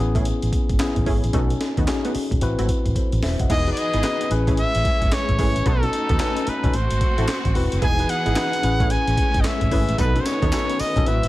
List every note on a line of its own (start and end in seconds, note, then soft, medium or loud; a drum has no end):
0.00 0.31 A1 loud
0.00 0.70 B3 medium
0.00 0.71 C#4 medium
0.00 0.71 E4 medium
0.00 0.71 G#4 loud
0.15 0.26 A3 medium
0.15 0.26 C#4 medium
0.15 0.27 E4 medium
0.15 0.27 G#4 medium
0.15 kick loud
0.15 closed hi-hat medium
0.25 closed hi-hat medium
0.42 0.50 A1 medium
0.42 closed hi-hat medium
0.53 kick medium
0.53 closed hi-hat medium
0.69 0.77 G#1 medium
0.69 kick medium
0.69 closed hi-hat soft
0.79 1.27 B3 medium
0.79 1.28 C#4 medium
0.79 1.28 E4 medium
0.79 1.28 G#4 medium
0.79 snare loud
0.79 clap loud
0.79 closed hi-hat medium
0.96 1.04 A1 medium
0.96 kick medium
0.96 closed hi-hat soft
1.06 1.19 G#1 medium
1.06 1.24 A3 medium
1.06 1.24 C#4 medium
1.06 1.24 E4 medium
1.06 1.24 G#4 medium
1.06 kick medium
1.06 open hi-hat medium
1.24 1.31 A1 medium
1.24 closed hi-hat medium
1.33 1.54 B1 loud
1.33 1.51 A3 medium
1.33 1.51 B3 medium
1.33 1.81 C#4 medium
1.33 1.82 D#4 medium
1.33 1.51 D#4 medium
1.33 1.82 F#4 medium
1.33 1.52 F#4 loud
1.33 1.82 A4 loud
1.33 kick loud
1.33 closed hi-hat medium
1.50 closed hi-hat soft
1.61 snare medium
1.61 closed hi-hat medium
1.77 1.85 D#2 medium
1.77 1.89 A3 medium
1.77 1.89 B3 medium
1.77 1.89 D#4 medium
1.77 1.89 F#4 medium
1.77 kick medium
1.77 closed hi-hat soft
1.87 2.36 C#4 medium
1.87 2.36 D#4 medium
1.87 2.36 F#4 medium
1.87 2.36 G#4 medium
1.87 snare loud
1.87 clap medium
1.87 closed hi-hat medium
2.05 2.16 A3 medium
2.05 2.16 B3 medium
2.05 2.16 D#4 medium
2.05 2.16 F#4 medium
2.05 closed hi-hat medium
2.15 muted fingered electric bass stroke soft
2.15 open hi-hat medium
2.31 2.39 B1 medium
2.31 kick loud
2.31 closed hi-hat medium
2.41 2.54 A1 loud
2.41 2.90 C4 medium
2.41 2.90 E4 medium
2.41 2.90 F#4 medium
2.41 2.90 B4 loud
2.41 kick medium
2.41 closed hi-hat medium
2.58 2.66 G#1 medium
2.58 2.70 A3 medium
2.58 2.70 C4 medium
2.58 2.70 E4 medium
2.58 2.70 F#4 medium
2.58 closed hi-hat medium
2.69 kick medium
2.69 closed hi-hat medium
2.86 2.93 A1 medium
2.86 kick medium
2.86 closed hi-hat medium
2.96 3.22 A4 medium
2.96 3.22 C5 medium
2.96 kick medium
2.96 closed hi-hat medium
3.12 3.20 A1 medium
3.12 closed hi-hat soft
3.23 3.35 E1 medium
3.23 3.39 C5 medium
3.23 3.39 E5 medium
3.23 snare medium
3.23 open hi-hat medium
3.40 3.47 F#1 medium
3.40 3.66 D#5 medium
3.40 3.66 F#5 medium
3.40 kick medium
3.40 closed hi-hat medium
3.50 3.70 E1 loud
3.50 4.30 E3 medium
3.50 3.67 B3 medium
3.50 4.30 B3 medium
3.50 4.30 D#4 medium
3.50 3.67 D#4 medium
3.50 3.67 E4 medium
3.50 4.30 G#4 medium
3.50 3.68 G#4 medium
3.50 3.71 D#5 loud
3.50 kick loud
3.50 closed hi-hat medium
3.50 crash medium
3.67 3.99 D#4 medium
3.67 3.99 F#4 medium
3.67 4.00 G#4 medium
3.67 4.00 B4 medium
3.67 closed hi-hat soft
3.72 3.80 D5 medium
3.77 4.32 D#5 loud
3.77 closed hi-hat medium
3.93 4.01 G#1 medium
3.93 4.05 B3 medium
3.93 4.05 D#4 medium
3.93 4.05 E4 medium
3.93 4.05 G#4 medium
3.93 closed hi-hat soft
4.03 4.31 D#4 medium
4.03 4.31 F#4 medium
4.03 4.30 G#4 medium
4.03 4.30 B4 medium
4.03 snare loud
4.03 clap medium
4.03 closed hi-hat medium
4.21 closed hi-hat medium
4.30 4.64 A1 loud
4.30 5.64 G#3 medium
4.30 5.64 A3 medium
4.30 5.64 C#4 medium
4.30 5.26 C#4 medium
4.30 5.26 E4 medium
4.30 5.26 G#4 medium
4.30 5.26 B4 medium
4.30 closed hi-hat medium
4.47 4.59 A3 medium
4.47 4.59 C#4 medium
4.47 4.59 E4 medium
4.47 4.59 G#4 medium
4.47 kick loud
4.47 closed hi-hat medium
4.57 5.15 E5 loud
4.57 closed hi-hat medium
4.75 4.82 A1 medium
4.75 closed hi-hat medium
4.85 kick loud
4.85 closed hi-hat medium
5.02 5.09 G#1 medium
5.02 kick medium
5.02 closed hi-hat medium
5.12 5.69 C#5 medium
5.12 snare loud
5.12 clap loud
5.12 closed hi-hat medium
5.29 5.36 A1 medium
5.29 kick medium
5.29 closed hi-hat soft
5.38 5.52 G#1 medium
5.38 5.56 A3 medium
5.38 5.66 C#4 medium
5.38 5.56 C#4 medium
5.38 5.66 E4 medium
5.38 5.57 E4 medium
5.38 5.57 G#4 medium
5.38 5.66 G#4 medium
5.38 5.66 B4 medium
5.38 kick medium
5.38 open hi-hat medium
5.56 5.64 A1 medium
5.56 closed hi-hat medium
5.65 5.86 B1 loud
5.65 7.80 A3 medium
5.65 5.83 B3 medium
5.65 6.73 B3 medium
5.65 5.83 D#4 medium
5.65 6.73 D#4 medium
5.65 5.83 F#4 medium
5.65 5.84 A4 loud
5.65 6.51 A4 loud
5.65 kick loud
5.65 closed hi-hat medium
5.82 6.15 C#4 medium
5.82 6.15 D#4 medium
5.82 6.16 F#4 medium
5.82 6.16 A4 medium
5.82 closed hi-hat soft
5.93 closed hi-hat medium
6.09 6.17 D#2 medium
6.09 6.21 B3 medium
6.09 6.21 D#4 medium
6.09 6.21 F#4 medium
6.09 6.21 A4 medium
6.09 kick medium
6.09 closed hi-hat soft
6.19 6.56 C#4 medium
6.19 6.56 D#4 medium
6.19 6.57 F#4 medium
6.19 6.57 B4 medium
6.19 snare loud
6.19 clap medium
6.19 closed hi-hat medium
6.37 closed hi-hat medium
6.47 6.77 B4 medium
6.47 muted fingered electric bass stroke soft
6.47 closed hi-hat medium
6.64 6.71 B1 medium
6.64 6.74 C#4 medium
6.64 6.74 D#4 medium
6.64 6.74 F#4 medium
6.64 6.74 A4 medium
6.64 kick loud
6.64 closed hi-hat medium
6.73 6.87 A1 loud
6.73 7.81 C4 medium
6.73 7.81 F#4 medium
6.73 7.56 C5 medium
6.73 closed hi-hat medium
6.91 6.99 G#1 medium
6.91 closed hi-hat medium
7.01 kick medium
7.01 closed hi-hat medium
7.18 7.25 A1 medium
7.18 7.29 C4 medium
7.18 7.29 E4 medium
7.18 7.29 F#4 medium
7.18 7.29 A4 medium
7.18 closed hi-hat soft
7.28 snare loud
7.28 clap loud
7.28 closed hi-hat medium
7.45 7.53 A1 loud
7.45 kick medium
7.45 closed hi-hat soft
7.55 7.68 E1 medium
7.55 7.82 C4 medium
7.55 7.82 E4 medium
7.55 7.82 F#4 medium
7.55 7.82 B4 medium
7.55 open hi-hat medium
7.72 7.80 F#1 medium
7.72 closed hi-hat medium
7.81 8.02 E1 loud
7.81 8.62 E3 medium
7.81 8.62 B3 medium
7.81 8.00 B3 medium
7.81 8.62 D#4 medium
7.81 8.00 D#4 medium
7.81 8.00 E4 medium
7.81 8.62 G#4 medium
7.81 8.00 G#4 loud
7.81 8.11 G#5 loud
7.81 kick loud
7.81 closed hi-hat medium
7.99 8.32 D#4 medium
7.99 8.32 F#4 medium
7.99 8.32 G#4 medium
7.99 8.32 B4 medium
7.99 closed hi-hat soft
8.09 8.92 F#5 loud
8.09 closed hi-hat medium
8.25 8.34 G#1 medium
8.25 8.37 B3 medium
8.25 8.37 D#4 medium
8.25 8.37 E4 medium
8.25 8.37 G#4 medium
8.25 closed hi-hat soft
8.35 8.63 D#4 medium
8.35 8.63 F#4 medium
8.35 8.62 G#4 medium
8.35 8.63 B4 medium
8.35 snare loud
8.35 clap medium
8.35 closed hi-hat medium
8.53 closed hi-hat medium
8.62 8.96 A1 loud
8.62 9.97 G#3 medium
8.62 11.04 A3 medium
8.62 9.58 C#4 medium
8.62 9.97 C#4 medium
8.62 9.58 E4 medium
8.62 9.59 G#4 medium
8.62 9.59 B4 medium
8.62 closed hi-hat medium
8.80 8.91 A3 medium
8.80 8.91 C#4 medium
8.80 8.92 E4 medium
8.80 8.92 G#4 medium
8.80 kick loud
8.80 closed hi-hat medium
8.90 9.42 G#5 loud
8.90 closed hi-hat medium
9.07 9.15 A1 medium
9.07 closed hi-hat medium
9.17 kick medium
9.17 closed hi-hat medium
9.34 9.42 G#1 medium
9.34 kick medium
9.34 closed hi-hat medium
9.41 9.48 D#5 medium
9.41 snare loud
9.41 clap medium
9.41 closed hi-hat medium
9.46 9.99 E5 loud
9.61 9.69 A1 medium
9.61 kick medium
9.61 closed hi-hat soft
9.71 9.84 G#1 medium
9.71 9.89 A3 medium
9.71 9.98 C#4 medium
9.71 9.89 C#4 medium
9.71 9.98 E4 medium
9.71 9.89 E4 medium
9.71 9.89 G#4 medium
9.71 9.99 G#4 medium
9.71 9.99 B4 medium
9.71 kick medium
9.71 open hi-hat medium
9.89 9.96 A1 medium
9.89 closed hi-hat medium
9.97 10.19 B1 loud
9.97 11.05 D#3 medium
9.97 11.05 B3 medium
9.97 10.16 B3 loud
9.97 10.16 D#4 medium
9.97 10.16 F#4 medium
9.97 10.16 A4 loud
9.97 10.22 B4 medium
9.97 kick loud
9.97 closed hi-hat medium
9.97 tambourine medium
10.15 10.48 C#4 medium
10.15 10.48 D#4 medium
10.15 10.48 F#4 medium
10.15 10.48 A4 medium
10.15 closed hi-hat soft
10.21 10.27 C5 medium
10.25 10.82 C#5 loud
10.25 snare medium
10.25 closed hi-hat medium
10.25 tambourine medium
10.42 10.50 D#2 medium
10.42 10.53 B3 medium
10.42 10.53 D#4 medium
10.42 10.54 F#4 medium
10.42 10.54 A4 medium
10.42 kick medium
10.42 closed hi-hat soft
10.52 10.89 C#4 medium
10.52 10.89 D#4 medium
10.52 10.89 F#4 medium
10.52 10.89 A4 medium
10.52 snare loud
10.52 clap medium
10.52 closed hi-hat medium
10.52 tambourine loud
10.70 closed hi-hat medium
10.79 11.08 D#5 medium
10.79 muted fingered electric bass stroke soft
10.79 open hi-hat medium
10.79 tambourine medium
10.96 11.04 B1 medium
10.96 11.06 C#4 medium
10.96 11.07 D#4 medium
10.96 11.06 F#4 medium
10.96 11.07 A4 medium
10.96 kick loud
10.96 closed hi-hat medium
11.05 11.19 A1 medium
11.05 11.28 F#3 medium
11.05 11.28 A3 medium
11.05 11.28 C4 medium
11.05 11.28 E4 medium
11.05 11.28 F#4 medium
11.05 11.28 B4 medium
11.05 11.28 E5 medium
11.05 closed hi-hat medium
11.23 11.28 G#1 medium
11.23 closed hi-hat medium